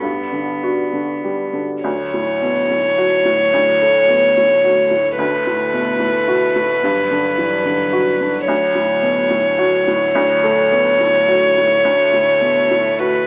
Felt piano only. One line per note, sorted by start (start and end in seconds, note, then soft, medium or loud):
0.02 1.80 G2 soft
0.32 0.82 D3 soft
0.63 1.12 F#4 soft
0.93 1.42 D3 soft
1.24 1.73 G3 soft
1.53 1.84 D3 soft
1.84 3.50 D2 medium
2.14 2.59 A2 soft
2.42 2.70 B2 soft
2.70 3.15 A2 soft
2.98 3.43 F#4 soft
3.25 3.71 A2 soft
3.53 5.15 D2 soft
3.81 4.26 A3 soft
4.09 4.37 B3 soft
4.37 4.81 A2 soft
4.64 5.08 F#4 soft
4.91 5.19 A2 soft
5.18 6.79 D2 soft
5.47 5.91 A2 soft
5.73 6.01 B2 soft
5.99 6.44 A2 soft
6.28 6.72 F#4 soft
6.56 6.83 A2 soft
6.83 8.44 G2 medium
7.11 7.55 D3 soft
7.38 7.66 E3 soft
7.65 8.10 D3 soft
7.93 8.37 F#4 soft
8.21 8.48 D3 soft
8.48 10.10 D2 medium
8.75 9.19 A2 soft
9.02 9.30 B2 soft
9.30 9.75 A2 soft
9.58 10.03 F#4 soft
9.87 10.31 A2 soft
10.15 11.80 D2 medium
10.43 10.88 A3 soft
10.72 11.00 B3 soft
11.00 11.45 A2 soft
11.28 11.73 F#4 soft
11.58 11.85 A2 soft
11.84 13.27 D2 medium
12.13 12.58 A2 soft
12.41 12.70 B2 soft
12.71 13.17 A2 soft
12.99 13.27 F#4 soft